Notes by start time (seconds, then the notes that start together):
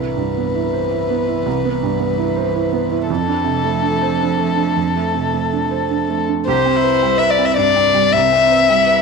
Already playing: C2 E3 B4
0.00 E4
0.17 G2
0.38 B3
0.55 E4
0.73 C5
0.91 E4
1.10 B3
1.27 E4
1.46 C2
1.65 B3
1.83 G2
2.00 B3
2.18 E4
2.36 C5
2.55 E4
2.73 B3
2.91 E4
3.09 F2 F3 A4
3.27 D4
3.45 C3
3.64 A3
3.82 D4
4.02 C5
4.20 D4
4.38 A3
4.56 D4
4.77 F2
4.96 A3
5.14 C3
5.34 A3
5.53 D4
5.71 C5
5.90 D4
6.10 A3
6.29 D4
6.47 C2 G4 C5
6.66 C4
6.76 E4
6.83 B4
7.02 G3
7.18 B4 E5
7.30 D5
7.38 C4
7.45 E5
7.57 G2 D4 D5
7.76 C4
7.94 G3
8.12 C2 C4 E5
8.32 C4
8.51 B4
8.69 G3 E4
8.86 B4